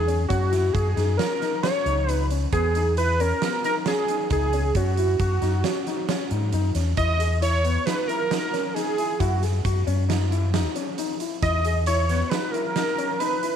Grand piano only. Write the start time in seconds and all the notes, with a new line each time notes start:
0.08 C#4
0.29 C#4
0.52 E4
0.74 F#4
0.96 D#4
1.18 C#4
1.42 D#4
1.64 C#4
1.86 D#4
2.08 D#4
2.31 C#4
2.53 B3
2.76 D#4
2.98 E4
3.20 C#4
3.43 B3
3.64 D#4
3.87 C#4
4.09 D#4
4.31 D#4
4.53 C#4
4.76 C#4
4.98 E4
5.20 F#4
5.42 D#4
5.65 C#4
5.87 D#4
6.09 C#4
6.31 D#4
6.53 D#4
6.75 C#4
6.97 E4
7.19 G#4
7.41 E4
7.64 B3
7.86 D#4
8.09 E4
8.31 D#4
8.53 C#4
8.75 D#4
8.98 E4
9.20 E4
9.42 G#4
9.65 F#4
9.87 C#4
10.09 D#4
10.31 E4
10.54 D#4
10.76 C#4
10.98 D#4
11.20 E4
11.42 E4
11.65 G#4
11.87 E4
12.09 B3
12.31 D#4
12.54 E4
12.76 D#4
12.98 C#4
13.20 D#4
13.43 E4